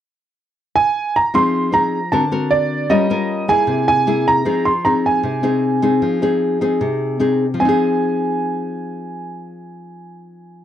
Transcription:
0.76 G#5
1.16 A#5
1.34 F3 C4 D#4 G#4 C6
1.72 C4 D#4 G#4 A#5
2.12 D3 C4 F#4 A#4 A5
2.31 C4 F#4 A#4
2.51 D5
2.89 G3 C#4 F4 A#4 D#5
3.10 C#4 F4 A#4
3.48 A#3 E4 G#4 G#5
3.67 C3
3.88 G#5
4.07 A#3 E4 G#4
4.28 A#5
4.45 F3 C4 D#4 G#4
4.65 C6
4.85 C4 D#4 G#4 A#5
5.06 G#5
5.23 C3
5.43 C4 D#4 G#4
5.82 C4 D#4 G#4
6.02 F3
6.22 C4 D#4 G#4
6.61 C4 D#4 G#4
6.81 C3
7.20 C4 D#4 G#4
7.54 F3
7.60 C4 G#5
7.65 D#4 G#4

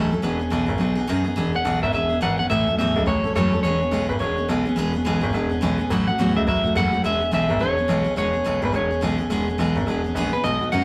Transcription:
Already playing: A2 E3 F#3 A3 C#4
0.11 D1 F#3 A3 C#4 A4
0.22 E1 E3 B3 C#4 G#4
0.39 E1 B3 C#4 G#4
0.50 B1 E3 B3 C#4 G#4
0.66 G#1 B3 C#4 G#4
0.78 B1 F#3 B3 D#4 G#4
0.95 B1 B3 D#4 G#4
1.07 F#2 B2 F#3 B3 D#4 G#4
1.24 F#2 B3 D#4 G#4
1.36 E1 E3 B3 C#4 G#4
1.53 E1 B3 C#4 G#4 F#5
1.65 B1 E3 B3 C#4 G#4
1.81 G#1 B3 C#4 G#4 E5
1.92 E1 E3 B3 C#4 G#4 E5
2.09 E1 B3 C#4 G#4
2.21 G#1 E3 B3 C#4 G#4 F#5
2.38 G#1 B3 C#4 G#4 F#5
2.50 A1 A2 E3 F#3 A3 C#4 A4 E5
2.67 A1 F#3 A3 C#4 A4
2.78 E2 A2 E3 F#3 A3 C#4 A4 E5
2.96 C#2 F#3 A3 C#4 A4
3.06 A1 F#3 A3 C#4 A4 C#5
3.24 A1 F#3 A3 C#4 A4
3.35 F#1 A2 E3 F#3 A3 C#4 A4 C#5
3.52 F#1 F#3 A3 C#4 A4
3.63 E1 E3 G#3 B3 C#4 G#4 C#5
3.79 E1 B3 C#4 G#4
3.91 B1 E3 G#3 B3 C#4 G#4
4.09 G#1 B3 C#4 G#4 B4
4.19 E1 G#3 B3 C#4 G#4 C#5
4.37 E1 B3 C#4 G#4
4.48 B1 E3 G#3 B3 C#4 G#4
4.65 B1 B3 C#4 G#4
4.76 E1 E3 G#3 B3 C#4 G#4
4.93 E1 B3 C#4 G#4
5.05 B1 E3 G#3 B3 C#4 G#4
5.21 G#1 B3 C#4 G#4
5.33 E1 G#3 B3 C#4 G#4
5.49 E1 B3 C#4 G#4
5.61 B1 E3 G#3 B3 C#4 G#4
5.78 B1 B3 C#4 G#4
5.90 A1 A2 E3 F#3 A3 C#4 F#4
6.07 A1 F#3 A3 C#4 F#4 F#5
6.18 E2 A2 E3 F#3 A3 C#4 F#4
6.35 C#2 F#3 A3 C#4 F#4 E5
6.47 A1 F#3 A3 C#4 F#4 E5
6.64 A1 F#3 A3 C#4 F#4
6.75 F#1 A2 E3 F#3 A3 C#4 F#4 F#5
6.92 F#1 F#3 A3 C#4 F#4
7.04 E1 E3 G#3 B3 C#4 G#4 E5
7.20 E1 B3 C#4 G#4
7.31 B1 E3 G#3 B3 C#4 G#4 E5
7.49 G#1 B3 C#4 G#4
7.59 E1 G#3 B3 C#4 G#4 C#5
7.77 E1 B3 C#4 G#4
7.88 B1 E3 G#3 B3 C#4 G#4
8.04 B1 B3 C#4 G#4
8.16 E1 E3 G#3 B3 C#4 G#4 C#5
8.33 E1 B3 C#4 G#4
8.44 B1 E3 G#3 B3 C#4 G#4
8.62 G#1 B3 C#4 G#4 B4
8.72 E1 G#3 B3 C#4 G#4 C#5
8.91 E1 B3 C#4 G#4
9.01 B1 E3 G#3 B3 C#4 G#4
9.18 B1 B3 C#4 G#4
9.30 E1 E3 G#3 B3 C#4 G#4
9.47 E1 B3 C#4 G#4
9.58 B1 E3 G#3 B3 C#4 G#4
9.75 G#1 B3 C#4 G#4
9.87 E1 G#3 B3 C#4 G#4
10.04 E1 B3 C#4 G#4
10.15 A#1 E3 G#3 B3 C#4 G#4
10.32 A#1 B3 C#4 G#4 B4
10.43 B1 B2 G#3 B3 D#4 F#4 D#5
10.61 B1 B3 D#4 F#4
10.72 F#2 B2 G#3 B3 D#4 F#4 F#5

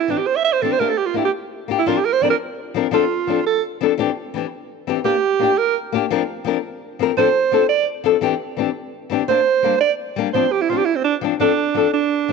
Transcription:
0.00 E4
0.08 E3 C4 D4, muted nylon-string guitar stroke
0.18 G4
0.27 C5
0.36 E5
0.44 E5
0.53 C5
0.62 E3 C4 D4 G4 A4
0.72 C5
0.79 A#3 D4 G4 A#4
0.89 A4
0.98 G4
1.06 F4
1.14 A#3 D4 E4 G4
1.25 G4
1.68 A#3 D4 G4
1.79 E4
1.86 F3 C4 D4 F4 A#4
1.97 G4
2.05 A#4
2.13 C5
2.21 F3 C4 D4 A#4 D5
2.30 A#4
2.74 F3 C4 D4 A#4
2.91 F3 C4 D4 F4 A4
3.27 F3 C4 D4 A4
3.46 A4
3.81 F3 C4 D4 A4
3.98 E3 C4 D4 G4
4.34 E3 C4 D4 G4
4.87 E3 C4 D4 G4
5.04 A#3 D4 G4
5.39 A#3 D4 G4
5.58 A#4
5.92 A#3 D4 G4
6.11 F3 C4 D4 A#4
6.45 F3 C4 D4 A#4
6.99 F3 C4 D4 A#4
7.17 F3 C4 D4 A4 C5
7.52 F3 C4 D4 A4
7.69 D5
8.04 F3 C4 D4 A4
8.21 E3 C4 D4 G4
8.57 E3 C4 D4 G4
9.10 E3 C4 D4 G4
9.28 A#3 D4 C5, muted nylon-string guitar stroke
9.63 G3 A#3 D4
9.80 D5
10.16 G3 A#3 D4
10.33 F3 C4 D4 C5
10.52 G4
10.61 E4
10.69 F3 C4 D4 F4
10.77 G4
10.85 E4
10.96 C4
11.04 D4
11.21 F3 C4 D4
11.40 F3 C4 D4 A4
11.74 F3 C4 D4 A4
11.93 D4
12.28 F3 C4

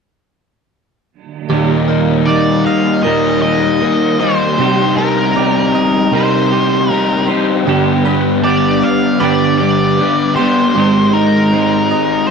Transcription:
1.50 D#2 A#2 D#3 G3 A#3 D#4 G4
1.88 D#3 G3 A#3 D#4 A#4
2.26 D#3 G3 A#3 D#4 D5
2.66 D#5 F5
3.03 D#2 A#2 D#3 G3 A#3 D#4 A#4 D#5
3.42 D#3 G3 A#3 D#4 G4 D#5
3.82 D#3 G3 A#3 D#4 A#4
4.20 D#3 G3 A#3 D#4 C5
4.58 C3 G3 C4 D#4 G4
4.97 C4 D#4 G4 A#4
5.36 G3 C4 D#4 G4 D5
5.75 D#5
6.12 C3 G3 C4 D#4 G4 A#4 C5
6.51 C4 D#4 G4
6.89 G3 C4 D#4 G4 A#4
7.28 C4 D#4 G4 C5
7.66 G2 D3 G3 B3 D4 G4
8.05 G3 B3 D4 G4 B4
8.42 G3 B3 D4 G4 D5
8.82 D5 F5
9.20 G2 D3 G3 B3 D4 G4 B4 D5
9.58 B3 D4 G4 D5
9.63 G3
9.97 G3 B3 D4 B4
10.01 G4
10.36 B3 D4 G4 C5 C6
10.40 G3
10.75 G#2 D#3 G#3 C4 D#4 G4
11.13 G#3 C4 D#4 A#4
11.52 D#3 G#3 C4 D#4 C5
11.91 D#5
12.27 C5

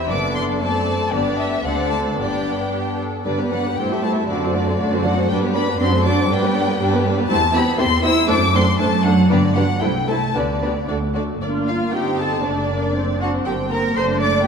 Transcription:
Already playing: C4 E4 E5
0.10 F#1 F#2 B3 D4 A4 D5 D6
0.35 C6
0.61 A3 C4 A4 D5 A5
1.12 G1 G2 B3 D4 G4 D5
1.38 E5
1.64 D2 C4 D4 A4 D5 F#5
1.91 A5
2.17 G1 G2 B3 D4 G4 D5 G5
2.72 G4
3.00 A4
3.24 G2 D3 G3 D4 B4 D5
3.38 B3 G4 B4
3.50 F#3 G3 D4 B4 D5 F#5
3.63 B3 G4 B4
3.77 G2 G3 A3 E4 G4 C5 G5
3.90 C4 G4 A4 E5
4.02 A3 E4 G4 C5 A5
4.15 C4 G4 A4 E5
4.28 F#2 D3 A3 D4 F#4 D5
4.41 C4 F#4 A4 C5
4.54 A3 D4 F#4 D5
4.66 C4 F#4 A4 C5
4.78 F#2 A3 D4 F#4 D5
4.91 C4 F#4 A4 C5
5.03 F#3 A3 D4 F#4 D5 F#5
5.16 C4 F#4 A4 C5
5.28 G2 G3 D4 B4 D5 G5
5.41 B3 G4 B4
5.53 G3 B3 D4 B4 D5 B5
5.65 B3 B4
5.69 G4
5.79 F#2 F#3 C4 D4 F#4 D5 C6
5.91 A3 C4 A4 C5
6.04 F#3 D4 F#4 D5 D6
6.16 A3 C4
6.20 A4 C5
6.29 G2 G3 D4 D5 G5
6.33 B4
6.41 B3
6.45 G4 B4
6.53 G3 D4 B4 D5
6.66 B3 B4
6.71 G4
6.79 G2 G3 D4 B4 D5
6.91 B3
6.96 G4 B4
7.03 G3 D4
7.07 B4 D5
7.17 B3 G4 B4
7.28 E2 A3 C4 E4 G4 C5 A5
7.53 B3 C4 E4 G4 C5 B5
7.78 E2 C4 E4 G4 C5 C6
8.03 C4 E4 G4 C5 E6
8.28 F#2 A3 D4 A4 C5 D6
8.53 A3 C4 D4 A4 C5 C6
8.79 F#2 A3 D4 A4 C5 A5
9.04 F#3 A3 D4 A4 C5 F#5
9.30 G2 D3 B3 D4 G4 B4 D5
9.55 F#3 B3 D4 G4 B4 F#5
9.81 C2 G3 A3 E4 A4 C5 G5
10.08 A3 E4 A4 C5 A5
10.34 D2 D3 B3 D4 G4 B4 D5
10.62 B3 D4 G4 B4
10.88 D2 A3 D4 F#4 D5
11.14 A3 D4 F#4 D5
11.41 G1 A#3 D4 F4 D5
11.67 F4 F5
11.92 C4 D#4 G4 G5
12.18 A4 A5
12.43 F#1 A3 D4 D5
12.69 A#3
12.94 C4
13.20 D4 F#4 F#5
13.45 G1 A#3 G4 G5
13.70 A#4 A#5
13.95 F#1 A3 D4 C5 C6
14.21 D5 D6

